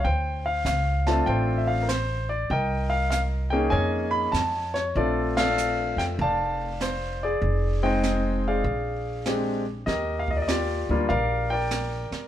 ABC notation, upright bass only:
X:1
M:4/4
L:1/8
Q:"Swing" 1/4=98
K:Bb
V:1 name="Upright bass" clef=bass
D,,2 _D,,2 A,,,4 | C,,4 F,,2 F,,2 | B,,,3 F,, F,,,4 | F,,,4 B,,,4 |
[K:Eb] E,,3 D,, B,,,3 z |]